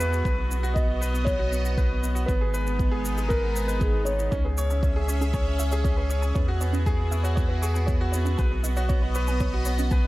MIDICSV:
0, 0, Header, 1, 7, 480
1, 0, Start_track
1, 0, Tempo, 508475
1, 239, Time_signature, 4, 2, 24, 8
1, 9508, End_track
2, 0, Start_track
2, 0, Title_t, "Synth arpeggio sound"
2, 0, Program_c, 0, 84
2, 4069, Note_on_c, 0, 73, 95
2, 4158, Note_off_c, 0, 73, 0
2, 4196, Note_on_c, 0, 71, 69
2, 4254, Note_off_c, 0, 71, 0
2, 4321, Note_on_c, 0, 85, 73
2, 4405, Note_off_c, 0, 85, 0
2, 4441, Note_on_c, 0, 80, 74
2, 4474, Note_off_c, 0, 80, 0
2, 4560, Note_on_c, 0, 73, 75
2, 4644, Note_off_c, 0, 73, 0
2, 4798, Note_on_c, 0, 73, 70
2, 4883, Note_off_c, 0, 73, 0
2, 4919, Note_on_c, 0, 61, 73
2, 4975, Note_off_c, 0, 61, 0
2, 5041, Note_on_c, 0, 80, 81
2, 5074, Note_off_c, 0, 80, 0
2, 5280, Note_on_c, 0, 76, 78
2, 5313, Note_off_c, 0, 76, 0
2, 5394, Note_on_c, 0, 73, 73
2, 5430, Note_off_c, 0, 73, 0
2, 5512, Note_on_c, 0, 73, 94
2, 5600, Note_off_c, 0, 73, 0
2, 5636, Note_on_c, 0, 71, 79
2, 5694, Note_off_c, 0, 71, 0
2, 5756, Note_on_c, 0, 85, 76
2, 5842, Note_off_c, 0, 85, 0
2, 5874, Note_on_c, 0, 80, 72
2, 5910, Note_off_c, 0, 80, 0
2, 5993, Note_on_c, 0, 73, 86
2, 6081, Note_off_c, 0, 73, 0
2, 6235, Note_on_c, 0, 73, 73
2, 6321, Note_off_c, 0, 73, 0
2, 6351, Note_on_c, 0, 61, 71
2, 6411, Note_off_c, 0, 61, 0
2, 6476, Note_on_c, 0, 80, 73
2, 6511, Note_off_c, 0, 80, 0
2, 6714, Note_on_c, 0, 76, 72
2, 6750, Note_off_c, 0, 76, 0
2, 6830, Note_on_c, 0, 73, 77
2, 6868, Note_off_c, 0, 73, 0
2, 6945, Note_on_c, 0, 73, 93
2, 7037, Note_off_c, 0, 73, 0
2, 7067, Note_on_c, 0, 71, 76
2, 7129, Note_off_c, 0, 71, 0
2, 7193, Note_on_c, 0, 85, 76
2, 7280, Note_off_c, 0, 85, 0
2, 7308, Note_on_c, 0, 80, 69
2, 7347, Note_off_c, 0, 80, 0
2, 7424, Note_on_c, 0, 73, 78
2, 7516, Note_off_c, 0, 73, 0
2, 7665, Note_on_c, 0, 73, 76
2, 7757, Note_off_c, 0, 73, 0
2, 7787, Note_on_c, 0, 61, 68
2, 7849, Note_off_c, 0, 61, 0
2, 7910, Note_on_c, 0, 80, 82
2, 7948, Note_off_c, 0, 80, 0
2, 8150, Note_on_c, 0, 75, 72
2, 8189, Note_off_c, 0, 75, 0
2, 8274, Note_on_c, 0, 73, 75
2, 8310, Note_off_c, 0, 73, 0
2, 8391, Note_on_c, 0, 73, 94
2, 8479, Note_off_c, 0, 73, 0
2, 8513, Note_on_c, 0, 71, 73
2, 8572, Note_off_c, 0, 71, 0
2, 8634, Note_on_c, 0, 85, 72
2, 8721, Note_off_c, 0, 85, 0
2, 8759, Note_on_c, 0, 80, 70
2, 8793, Note_off_c, 0, 80, 0
2, 8877, Note_on_c, 0, 73, 79
2, 8962, Note_off_c, 0, 73, 0
2, 9116, Note_on_c, 0, 73, 70
2, 9202, Note_off_c, 0, 73, 0
2, 9238, Note_on_c, 0, 61, 66
2, 9295, Note_off_c, 0, 61, 0
2, 9355, Note_on_c, 0, 80, 81
2, 9391, Note_off_c, 0, 80, 0
2, 9508, End_track
3, 0, Start_track
3, 0, Title_t, "Felt piano"
3, 0, Program_c, 1, 0
3, 0, Note_on_c, 1, 71, 110
3, 697, Note_on_c, 1, 75, 86
3, 728, Note_off_c, 1, 71, 0
3, 1177, Note_on_c, 1, 73, 94
3, 1203, Note_off_c, 1, 75, 0
3, 2133, Note_on_c, 1, 71, 84
3, 2177, Note_off_c, 1, 73, 0
3, 3102, Note_on_c, 1, 70, 87
3, 3135, Note_off_c, 1, 71, 0
3, 3556, Note_off_c, 1, 70, 0
3, 3584, Note_on_c, 1, 68, 74
3, 3823, Note_on_c, 1, 73, 81
3, 3839, Note_off_c, 1, 68, 0
3, 4513, Note_off_c, 1, 73, 0
3, 9508, End_track
4, 0, Start_track
4, 0, Title_t, "Grand piano"
4, 0, Program_c, 2, 0
4, 0, Control_c, 2, 64, 127
4, 0, Note_on_c, 2, 59, 90
4, 0, Note_on_c, 2, 66, 94
4, 0, Note_on_c, 2, 68, 87
4, 112, Note_off_c, 2, 59, 0
4, 119, Note_off_c, 2, 66, 0
4, 119, Note_on_c, 2, 66, 68
4, 188, Note_off_c, 2, 66, 0
4, 237, Note_on_c, 2, 71, 89
4, 252, Control_c, 2, 64, 0
4, 259, Note_off_c, 2, 68, 0
4, 352, Note_off_c, 2, 71, 0
4, 360, Note_on_c, 2, 59, 74
4, 412, Control_c, 2, 64, 127
4, 428, Note_off_c, 2, 59, 0
4, 479, Note_on_c, 2, 59, 67
4, 593, Note_off_c, 2, 59, 0
4, 596, Note_on_c, 2, 66, 97
4, 712, Note_off_c, 2, 66, 0
4, 713, Note_on_c, 2, 59, 90
4, 830, Note_off_c, 2, 59, 0
4, 838, Note_on_c, 2, 66, 67
4, 907, Note_off_c, 2, 66, 0
4, 957, Note_on_c, 2, 71, 91
4, 1072, Note_off_c, 2, 71, 0
4, 1074, Note_on_c, 2, 59, 69
4, 1145, Note_off_c, 2, 59, 0
4, 1197, Note_on_c, 2, 59, 70
4, 1312, Note_off_c, 2, 59, 0
4, 1314, Note_on_c, 2, 66, 90
4, 1431, Note_off_c, 2, 66, 0
4, 1436, Note_on_c, 2, 59, 89
4, 1552, Note_off_c, 2, 59, 0
4, 1554, Note_on_c, 2, 66, 66
4, 1625, Note_off_c, 2, 66, 0
4, 1679, Note_on_c, 2, 71, 93
4, 1793, Note_off_c, 2, 71, 0
4, 1794, Note_on_c, 2, 59, 68
4, 1865, Note_off_c, 2, 59, 0
4, 1915, Note_on_c, 2, 59, 70
4, 2030, Note_on_c, 2, 66, 86
4, 2031, Note_off_c, 2, 59, 0
4, 2149, Note_off_c, 2, 66, 0
4, 2151, Note_on_c, 2, 59, 91
4, 2170, Control_c, 2, 64, 0
4, 2269, Note_off_c, 2, 59, 0
4, 2275, Note_on_c, 2, 68, 71
4, 2346, Note_off_c, 2, 68, 0
4, 2364, Control_c, 2, 64, 127
4, 2395, Note_on_c, 2, 71, 92
4, 2511, Note_off_c, 2, 71, 0
4, 2515, Note_on_c, 2, 59, 70
4, 2586, Note_off_c, 2, 59, 0
4, 2633, Note_on_c, 2, 59, 73
4, 2750, Note_off_c, 2, 59, 0
4, 2752, Note_on_c, 2, 68, 92
4, 2869, Note_off_c, 2, 68, 0
4, 2876, Note_on_c, 2, 59, 87
4, 2992, Note_off_c, 2, 59, 0
4, 2999, Note_on_c, 2, 68, 73
4, 3067, Note_off_c, 2, 68, 0
4, 3119, Note_on_c, 2, 71, 89
4, 3233, Note_off_c, 2, 71, 0
4, 3237, Note_on_c, 2, 59, 69
4, 3307, Note_off_c, 2, 59, 0
4, 3359, Note_on_c, 2, 71, 68
4, 3458, Note_off_c, 2, 71, 0
4, 3472, Note_on_c, 2, 71, 88
4, 3590, Note_off_c, 2, 71, 0
4, 3598, Note_on_c, 2, 63, 75
4, 3713, Note_off_c, 2, 63, 0
4, 3718, Note_on_c, 2, 59, 72
4, 3824, Note_off_c, 2, 59, 0
4, 3838, Note_on_c, 2, 59, 63
4, 3953, Note_off_c, 2, 59, 0
4, 3956, Note_on_c, 2, 63, 69
4, 4071, Note_off_c, 2, 63, 0
4, 4078, Note_on_c, 2, 61, 84
4, 4090, Control_c, 2, 64, 0
4, 4192, Note_off_c, 2, 61, 0
4, 4201, Note_on_c, 2, 68, 69
4, 4254, Control_c, 2, 64, 127
4, 4269, Note_off_c, 2, 68, 0
4, 4321, Note_on_c, 2, 73, 92
4, 4434, Note_off_c, 2, 73, 0
4, 4442, Note_on_c, 2, 61, 65
4, 4509, Note_off_c, 2, 61, 0
4, 4564, Note_on_c, 2, 61, 74
4, 4676, Note_off_c, 2, 61, 0
4, 4684, Note_on_c, 2, 68, 84
4, 4796, Note_off_c, 2, 68, 0
4, 4802, Note_on_c, 2, 61, 84
4, 4914, Note_off_c, 2, 61, 0
4, 4922, Note_on_c, 2, 68, 74
4, 4989, Note_off_c, 2, 68, 0
4, 5043, Note_on_c, 2, 73, 85
4, 5155, Note_off_c, 2, 73, 0
4, 5163, Note_on_c, 2, 61, 70
4, 5230, Note_off_c, 2, 61, 0
4, 5285, Note_on_c, 2, 61, 71
4, 5396, Note_off_c, 2, 61, 0
4, 5403, Note_on_c, 2, 68, 96
4, 5515, Note_off_c, 2, 68, 0
4, 5524, Note_on_c, 2, 61, 99
4, 5635, Note_off_c, 2, 61, 0
4, 5636, Note_on_c, 2, 68, 69
4, 5706, Note_off_c, 2, 68, 0
4, 5759, Note_on_c, 2, 73, 91
4, 5873, Note_off_c, 2, 73, 0
4, 5885, Note_on_c, 2, 61, 68
4, 5951, Note_off_c, 2, 61, 0
4, 6003, Note_on_c, 2, 59, 73
4, 6010, Control_c, 2, 64, 0
4, 6115, Note_off_c, 2, 59, 0
4, 6119, Note_on_c, 2, 66, 93
4, 6181, Control_c, 2, 64, 127
4, 6233, Note_off_c, 2, 66, 0
4, 6242, Note_on_c, 2, 59, 91
4, 6354, Note_off_c, 2, 59, 0
4, 6364, Note_on_c, 2, 66, 68
4, 6430, Note_off_c, 2, 66, 0
4, 6481, Note_on_c, 2, 68, 99
4, 6594, Note_off_c, 2, 68, 0
4, 6602, Note_on_c, 2, 59, 68
4, 6669, Note_off_c, 2, 59, 0
4, 6719, Note_on_c, 2, 59, 73
4, 6833, Note_off_c, 2, 59, 0
4, 6839, Note_on_c, 2, 66, 94
4, 6953, Note_off_c, 2, 66, 0
4, 6960, Note_on_c, 2, 59, 89
4, 7074, Note_off_c, 2, 59, 0
4, 7081, Note_on_c, 2, 66, 69
4, 7149, Note_off_c, 2, 66, 0
4, 7202, Note_on_c, 2, 68, 90
4, 7315, Note_off_c, 2, 68, 0
4, 7323, Note_on_c, 2, 59, 72
4, 7389, Note_off_c, 2, 59, 0
4, 7440, Note_on_c, 2, 59, 80
4, 7554, Note_off_c, 2, 59, 0
4, 7560, Note_on_c, 2, 66, 98
4, 7674, Note_off_c, 2, 66, 0
4, 7681, Note_on_c, 2, 59, 100
4, 7794, Note_off_c, 2, 59, 0
4, 7801, Note_on_c, 2, 66, 74
4, 7869, Note_off_c, 2, 66, 0
4, 7923, Note_on_c, 2, 71, 89
4, 7931, Control_c, 2, 64, 0
4, 8035, Note_off_c, 2, 71, 0
4, 8040, Note_on_c, 2, 59, 73
4, 8105, Control_c, 2, 64, 127
4, 8108, Note_off_c, 2, 59, 0
4, 8159, Note_on_c, 2, 59, 76
4, 8273, Note_off_c, 2, 59, 0
4, 8278, Note_on_c, 2, 66, 97
4, 8393, Note_off_c, 2, 66, 0
4, 8398, Note_on_c, 2, 59, 94
4, 8513, Note_off_c, 2, 59, 0
4, 8523, Note_on_c, 2, 66, 70
4, 8589, Note_off_c, 2, 66, 0
4, 8643, Note_on_c, 2, 71, 95
4, 8755, Note_off_c, 2, 71, 0
4, 8764, Note_on_c, 2, 59, 77
4, 8830, Note_off_c, 2, 59, 0
4, 8884, Note_on_c, 2, 59, 74
4, 8995, Note_off_c, 2, 59, 0
4, 9003, Note_on_c, 2, 66, 97
4, 9115, Note_off_c, 2, 66, 0
4, 9127, Note_on_c, 2, 59, 89
4, 9237, Note_off_c, 2, 59, 0
4, 9247, Note_on_c, 2, 66, 72
4, 9312, Note_off_c, 2, 66, 0
4, 9367, Note_on_c, 2, 71, 100
4, 9477, Note_off_c, 2, 71, 0
4, 9508, End_track
5, 0, Start_track
5, 0, Title_t, "Analog synth pad"
5, 0, Program_c, 3, 89
5, 0, Note_on_c, 3, 64, 77
5, 0, Note_on_c, 3, 66, 75
5, 0, Note_on_c, 3, 68, 76
5, 201, Note_off_c, 3, 68, 0
5, 224, Note_off_c, 3, 64, 0
5, 243, Note_on_c, 3, 59, 87
5, 245, Note_on_c, 3, 75, 92
5, 2125, Note_off_c, 3, 66, 0
5, 2142, Note_off_c, 3, 59, 0
5, 2143, Note_off_c, 3, 75, 0
5, 2153, Note_on_c, 3, 56, 81
5, 2155, Note_on_c, 3, 59, 94
5, 2156, Note_on_c, 3, 63, 75
5, 4057, Note_off_c, 3, 56, 0
5, 4058, Note_off_c, 3, 59, 0
5, 4058, Note_off_c, 3, 63, 0
5, 4084, Note_on_c, 3, 68, 73
5, 4085, Note_on_c, 3, 76, 90
5, 4086, Note_on_c, 3, 61, 84
5, 5983, Note_off_c, 3, 61, 0
5, 5983, Note_off_c, 3, 76, 0
5, 5997, Note_on_c, 3, 64, 86
5, 6000, Note_on_c, 3, 66, 72
5, 7884, Note_off_c, 3, 68, 0
5, 7899, Note_off_c, 3, 64, 0
5, 7922, Note_on_c, 3, 75, 90
5, 7923, Note_on_c, 3, 59, 84
5, 9508, Note_off_c, 3, 59, 0
5, 9508, Note_off_c, 3, 66, 0
5, 9508, Note_off_c, 3, 75, 0
5, 9508, End_track
6, 0, Start_track
6, 0, Title_t, "Sub bass"
6, 0, Program_c, 4, 38
6, 0, Note_on_c, 4, 40, 87
6, 216, Note_off_c, 4, 40, 0
6, 235, Note_on_c, 4, 35, 85
6, 2133, Note_off_c, 4, 35, 0
6, 2157, Note_on_c, 4, 32, 83
6, 4054, Note_off_c, 4, 32, 0
6, 4077, Note_on_c, 4, 37, 90
6, 5974, Note_off_c, 4, 37, 0
6, 6000, Note_on_c, 4, 40, 89
6, 7896, Note_off_c, 4, 40, 0
6, 7918, Note_on_c, 4, 35, 88
6, 9508, Note_off_c, 4, 35, 0
6, 9508, End_track
7, 0, Start_track
7, 0, Title_t, "Drums"
7, 2, Note_on_c, 9, 82, 72
7, 97, Note_off_c, 9, 82, 0
7, 125, Note_on_c, 9, 82, 38
7, 219, Note_off_c, 9, 82, 0
7, 237, Note_on_c, 9, 36, 102
7, 244, Note_on_c, 9, 82, 30
7, 332, Note_off_c, 9, 36, 0
7, 338, Note_off_c, 9, 82, 0
7, 483, Note_on_c, 9, 82, 73
7, 577, Note_off_c, 9, 82, 0
7, 605, Note_on_c, 9, 82, 38
7, 699, Note_off_c, 9, 82, 0
7, 716, Note_on_c, 9, 36, 94
7, 723, Note_on_c, 9, 82, 30
7, 810, Note_off_c, 9, 36, 0
7, 818, Note_off_c, 9, 82, 0
7, 964, Note_on_c, 9, 82, 68
7, 1058, Note_off_c, 9, 82, 0
7, 1084, Note_on_c, 9, 82, 38
7, 1179, Note_off_c, 9, 82, 0
7, 1196, Note_on_c, 9, 36, 106
7, 1202, Note_on_c, 9, 82, 30
7, 1290, Note_off_c, 9, 36, 0
7, 1296, Note_off_c, 9, 82, 0
7, 1441, Note_on_c, 9, 82, 72
7, 1536, Note_off_c, 9, 82, 0
7, 1558, Note_on_c, 9, 82, 40
7, 1653, Note_off_c, 9, 82, 0
7, 1676, Note_on_c, 9, 36, 102
7, 1681, Note_on_c, 9, 82, 30
7, 1771, Note_off_c, 9, 36, 0
7, 1775, Note_off_c, 9, 82, 0
7, 1920, Note_on_c, 9, 82, 72
7, 2015, Note_off_c, 9, 82, 0
7, 2040, Note_on_c, 9, 82, 42
7, 2135, Note_off_c, 9, 82, 0
7, 2156, Note_on_c, 9, 36, 100
7, 2161, Note_on_c, 9, 82, 29
7, 2251, Note_off_c, 9, 36, 0
7, 2256, Note_off_c, 9, 82, 0
7, 2398, Note_on_c, 9, 82, 70
7, 2493, Note_off_c, 9, 82, 0
7, 2519, Note_on_c, 9, 82, 36
7, 2613, Note_off_c, 9, 82, 0
7, 2638, Note_on_c, 9, 36, 100
7, 2641, Note_on_c, 9, 82, 28
7, 2732, Note_off_c, 9, 36, 0
7, 2735, Note_off_c, 9, 82, 0
7, 2879, Note_on_c, 9, 82, 71
7, 2974, Note_off_c, 9, 82, 0
7, 2999, Note_on_c, 9, 82, 41
7, 3093, Note_off_c, 9, 82, 0
7, 3118, Note_on_c, 9, 36, 96
7, 3120, Note_on_c, 9, 82, 28
7, 3213, Note_off_c, 9, 36, 0
7, 3214, Note_off_c, 9, 82, 0
7, 3360, Note_on_c, 9, 82, 67
7, 3454, Note_off_c, 9, 82, 0
7, 3481, Note_on_c, 9, 82, 39
7, 3575, Note_off_c, 9, 82, 0
7, 3595, Note_on_c, 9, 82, 28
7, 3597, Note_on_c, 9, 36, 99
7, 3690, Note_off_c, 9, 82, 0
7, 3692, Note_off_c, 9, 36, 0
7, 3833, Note_on_c, 9, 82, 73
7, 3928, Note_off_c, 9, 82, 0
7, 3957, Note_on_c, 9, 82, 40
7, 4052, Note_off_c, 9, 82, 0
7, 4077, Note_on_c, 9, 36, 94
7, 4079, Note_on_c, 9, 82, 28
7, 4172, Note_off_c, 9, 36, 0
7, 4173, Note_off_c, 9, 82, 0
7, 4319, Note_on_c, 9, 82, 69
7, 4413, Note_off_c, 9, 82, 0
7, 4440, Note_on_c, 9, 82, 37
7, 4535, Note_off_c, 9, 82, 0
7, 4558, Note_on_c, 9, 36, 90
7, 4563, Note_on_c, 9, 82, 28
7, 4653, Note_off_c, 9, 36, 0
7, 4657, Note_off_c, 9, 82, 0
7, 4801, Note_on_c, 9, 82, 71
7, 4896, Note_off_c, 9, 82, 0
7, 4923, Note_on_c, 9, 82, 38
7, 5017, Note_off_c, 9, 82, 0
7, 5038, Note_on_c, 9, 36, 94
7, 5039, Note_on_c, 9, 82, 28
7, 5133, Note_off_c, 9, 36, 0
7, 5133, Note_off_c, 9, 82, 0
7, 5278, Note_on_c, 9, 82, 69
7, 5372, Note_off_c, 9, 82, 0
7, 5396, Note_on_c, 9, 82, 42
7, 5490, Note_off_c, 9, 82, 0
7, 5519, Note_on_c, 9, 36, 94
7, 5523, Note_on_c, 9, 82, 29
7, 5613, Note_off_c, 9, 36, 0
7, 5617, Note_off_c, 9, 82, 0
7, 5760, Note_on_c, 9, 82, 72
7, 5854, Note_off_c, 9, 82, 0
7, 5877, Note_on_c, 9, 82, 41
7, 5971, Note_off_c, 9, 82, 0
7, 5997, Note_on_c, 9, 82, 29
7, 5999, Note_on_c, 9, 36, 97
7, 6092, Note_off_c, 9, 82, 0
7, 6094, Note_off_c, 9, 36, 0
7, 6238, Note_on_c, 9, 82, 67
7, 6332, Note_off_c, 9, 82, 0
7, 6360, Note_on_c, 9, 82, 37
7, 6455, Note_off_c, 9, 82, 0
7, 6479, Note_on_c, 9, 36, 85
7, 6481, Note_on_c, 9, 82, 27
7, 6574, Note_off_c, 9, 36, 0
7, 6575, Note_off_c, 9, 82, 0
7, 6720, Note_on_c, 9, 82, 66
7, 6814, Note_off_c, 9, 82, 0
7, 6840, Note_on_c, 9, 82, 37
7, 6935, Note_off_c, 9, 82, 0
7, 6959, Note_on_c, 9, 36, 94
7, 6962, Note_on_c, 9, 82, 27
7, 7054, Note_off_c, 9, 36, 0
7, 7056, Note_off_c, 9, 82, 0
7, 7200, Note_on_c, 9, 82, 68
7, 7294, Note_off_c, 9, 82, 0
7, 7320, Note_on_c, 9, 82, 38
7, 7414, Note_off_c, 9, 82, 0
7, 7439, Note_on_c, 9, 36, 94
7, 7439, Note_on_c, 9, 82, 28
7, 7533, Note_off_c, 9, 36, 0
7, 7533, Note_off_c, 9, 82, 0
7, 7677, Note_on_c, 9, 82, 68
7, 7772, Note_off_c, 9, 82, 0
7, 7796, Note_on_c, 9, 82, 39
7, 7891, Note_off_c, 9, 82, 0
7, 7915, Note_on_c, 9, 82, 26
7, 7918, Note_on_c, 9, 36, 91
7, 8010, Note_off_c, 9, 82, 0
7, 8012, Note_off_c, 9, 36, 0
7, 8156, Note_on_c, 9, 82, 71
7, 8250, Note_off_c, 9, 82, 0
7, 8276, Note_on_c, 9, 82, 33
7, 8370, Note_off_c, 9, 82, 0
7, 8394, Note_on_c, 9, 82, 28
7, 8398, Note_on_c, 9, 36, 90
7, 8488, Note_off_c, 9, 82, 0
7, 8493, Note_off_c, 9, 36, 0
7, 8635, Note_on_c, 9, 82, 62
7, 8729, Note_off_c, 9, 82, 0
7, 8757, Note_on_c, 9, 82, 38
7, 8851, Note_off_c, 9, 82, 0
7, 8875, Note_on_c, 9, 82, 27
7, 8878, Note_on_c, 9, 36, 91
7, 8969, Note_off_c, 9, 82, 0
7, 8972, Note_off_c, 9, 36, 0
7, 9111, Note_on_c, 9, 82, 68
7, 9206, Note_off_c, 9, 82, 0
7, 9238, Note_on_c, 9, 82, 40
7, 9332, Note_off_c, 9, 82, 0
7, 9356, Note_on_c, 9, 82, 27
7, 9358, Note_on_c, 9, 36, 98
7, 9450, Note_off_c, 9, 82, 0
7, 9452, Note_off_c, 9, 36, 0
7, 9508, End_track
0, 0, End_of_file